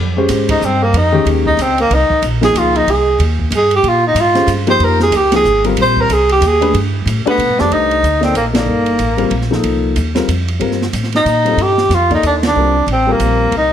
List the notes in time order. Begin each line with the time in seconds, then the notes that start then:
Already playing: F2
0.16 G#3 C#4 G4 C5
0.28 G#2, snare, hi-hat pedal, ride
0.49 D#4, kick, ride
0.61 G2 C4, hi-hat pedal
0.83 A#3
0.93 F2, ride
0.97 D#4
1.12 D#3 G#3 C#4 G4
1.25 D#2, ride
1.46 D#4, kick
1.57 C#2, hi-hat pedal, ride
1.61 C4
1.78 A#3, ride
1.90 C2, ride
1.94 D#4
2.10 muted upright bass stroke, kick
2.22 A#1, hi-hat pedal, ride
2.41 F3 A#3 D#4 G#4, snare, ride
2.54 C#2, hi-hat pedal, ride
2.58 F4
2.76 D#4, ride
2.87 C2 G#4, ride
3.19 D#2, ride
3.39 kick
3.50 G2, hi-hat pedal, ride
3.56 G#4
3.71 ride
3.75 G4
3.83 A#2, ride
3.88 F4
4.07 D#4
4.14 G#2, hi-hat pedal, ride
4.20 F4
4.35 G#3 C#4 G4 C5, snare, ride
4.47 G2, hi-hat pedal, ride
4.67 F3 A#3 D#4 G4 C5, ride
4.79 F2, ride
4.84 A#4
5.00 G#4, snare
5.11 C#2, hi-hat pedal, ride
5.16 G4
5.32 F3 A#3 D#4 G#4, snare, ride
5.36 G#4
5.44 G#1, hi-hat pedal
5.64 G3 C4 F4 A#4, ride
5.77 A#1, ride
5.82 C5
5.96 kick
6.01 A#4
6.09 C2, hi-hat pedal, ride
6.13 G#4
6.29 G4, ride
6.41 D#2, hi-hat pedal, ride
6.47 G#4
6.60 A3 D4 G4 B4, ride
6.74 G2, ride
7.06 A2, hi-hat pedal, ride
7.26 A3 B3 D4 G4 B4, muted upright bass stroke, ride
7.38 B2, ride
7.49 G2
7.58 F2 A3 D4 G4 C5, snare
7.70 C2 D#4, ride
7.91 ride
8.02 D2, hi-hat pedal, ride
8.21 A#3 C4 D#4 A4 D5, snare, ride
8.34 A#1 A#3, hi-hat pedal, ride
8.53 A#3 D#4 A4 D5, snare, ride
8.66 G1
8.86 ride
8.99 A1, hi-hat pedal, ride
9.17 G3 C4 F4 A#4, ride
9.30 A#1, ride
9.41 snare
9.51 F3 A#3 D#4 A4, snare
9.64 C2, ride
9.96 D#2, hi-hat pedal, ride
10.15 G3 C4 F4 A#4, snare, ride
10.28 F2, hi-hat pedal, ride
10.48 ride
10.59 G2 G3 C4 F4 A#4, ride
10.71 snare
10.82 snare
10.93 A2, hi-hat pedal, ride
11.03 snare
11.12 D#4, snare, ride
11.25 A#2, hi-hat pedal, ride
11.45 G3 C4 F4 A4, ride
11.57 G2, ride
11.62 G4
11.78 snare
11.89 F2, snare, hi-hat pedal, ride
11.95 F4
12.10 A#3 D#4 A4 D5, kick, ride
12.14 D#4
12.22 D#2, hi-hat pedal, ride
12.27 D4
12.43 snare, ride
12.47 D4
12.55 C2 G3 C4 F4 A#4
12.86 A1, ride
12.93 C4
13.07 G3 C4 F4 A#4
13.12 A#3
13.19 A#1, hi-hat pedal, ride
13.51 C2, ride
13.57 D#4